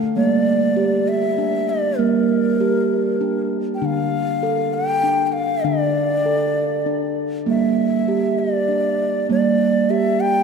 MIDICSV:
0, 0, Header, 1, 4, 480
1, 0, Start_track
1, 0, Tempo, 608519
1, 131, Time_signature, 6, 3, 24, 8
1, 8230, End_track
2, 0, Start_track
2, 0, Title_t, "Bansuri"
2, 0, Program_c, 0, 73
2, 127, Note_on_c, 0, 74, 82
2, 852, Note_on_c, 0, 76, 91
2, 864, Note_off_c, 0, 74, 0
2, 1333, Note_on_c, 0, 74, 75
2, 1345, Note_off_c, 0, 76, 0
2, 1563, Note_on_c, 0, 70, 71
2, 1575, Note_off_c, 0, 74, 0
2, 2766, Note_off_c, 0, 70, 0
2, 2955, Note_on_c, 0, 79, 55
2, 3036, Note_on_c, 0, 77, 81
2, 3048, Note_off_c, 0, 79, 0
2, 3739, Note_on_c, 0, 79, 93
2, 3750, Note_off_c, 0, 77, 0
2, 4154, Note_off_c, 0, 79, 0
2, 4154, Note_on_c, 0, 79, 54
2, 4202, Note_on_c, 0, 77, 81
2, 4214, Note_off_c, 0, 79, 0
2, 4450, Note_on_c, 0, 74, 73
2, 4461, Note_off_c, 0, 77, 0
2, 5650, Note_off_c, 0, 74, 0
2, 5912, Note_on_c, 0, 76, 68
2, 6617, Note_on_c, 0, 74, 70
2, 6629, Note_off_c, 0, 76, 0
2, 7334, Note_off_c, 0, 74, 0
2, 7346, Note_on_c, 0, 74, 74
2, 7811, Note_on_c, 0, 76, 76
2, 7823, Note_off_c, 0, 74, 0
2, 8049, Note_on_c, 0, 79, 88
2, 8061, Note_off_c, 0, 76, 0
2, 8230, Note_off_c, 0, 79, 0
2, 8230, End_track
3, 0, Start_track
3, 0, Title_t, "Steel tongue drum"
3, 0, Program_c, 1, 114
3, 0, Note_on_c, 1, 50, 77
3, 0, Note_on_c, 1, 57, 81
3, 103, Note_off_c, 1, 50, 0
3, 127, Note_on_c, 1, 55, 57
3, 131, Note_off_c, 1, 57, 0
3, 131, Note_on_c, 1, 58, 68
3, 604, Note_on_c, 1, 67, 67
3, 610, Note_off_c, 1, 58, 0
3, 1086, Note_off_c, 1, 67, 0
3, 1090, Note_on_c, 1, 62, 69
3, 1539, Note_off_c, 1, 55, 0
3, 1568, Note_on_c, 1, 58, 75
3, 1569, Note_off_c, 1, 62, 0
3, 1573, Note_on_c, 1, 55, 60
3, 2048, Note_off_c, 1, 58, 0
3, 2055, Note_on_c, 1, 67, 66
3, 2530, Note_on_c, 1, 62, 63
3, 2532, Note_off_c, 1, 67, 0
3, 2982, Note_off_c, 1, 55, 0
3, 3001, Note_off_c, 1, 62, 0
3, 3010, Note_on_c, 1, 62, 70
3, 3011, Note_on_c, 1, 50, 62
3, 3490, Note_off_c, 1, 62, 0
3, 3493, Note_on_c, 1, 69, 69
3, 3971, Note_off_c, 1, 69, 0
3, 3973, Note_on_c, 1, 62, 67
3, 4422, Note_off_c, 1, 50, 0
3, 4445, Note_off_c, 1, 62, 0
3, 4449, Note_on_c, 1, 50, 60
3, 4454, Note_on_c, 1, 62, 75
3, 4932, Note_off_c, 1, 62, 0
3, 4935, Note_on_c, 1, 69, 62
3, 5412, Note_on_c, 1, 62, 60
3, 5413, Note_off_c, 1, 69, 0
3, 5861, Note_off_c, 1, 50, 0
3, 5887, Note_on_c, 1, 58, 72
3, 5891, Note_off_c, 1, 62, 0
3, 5895, Note_on_c, 1, 55, 58
3, 6369, Note_off_c, 1, 58, 0
3, 6375, Note_on_c, 1, 67, 62
3, 6851, Note_on_c, 1, 62, 56
3, 6853, Note_off_c, 1, 67, 0
3, 7304, Note_off_c, 1, 55, 0
3, 7331, Note_off_c, 1, 62, 0
3, 7332, Note_on_c, 1, 58, 70
3, 7338, Note_on_c, 1, 55, 66
3, 7811, Note_off_c, 1, 58, 0
3, 7812, Note_on_c, 1, 67, 58
3, 8230, Note_off_c, 1, 55, 0
3, 8230, Note_off_c, 1, 67, 0
3, 8230, End_track
4, 0, Start_track
4, 0, Title_t, "Cajon"
4, 25, Note_on_c, 9, 38, 19
4, 104, Note_off_c, 9, 38, 0
4, 8230, End_track
0, 0, End_of_file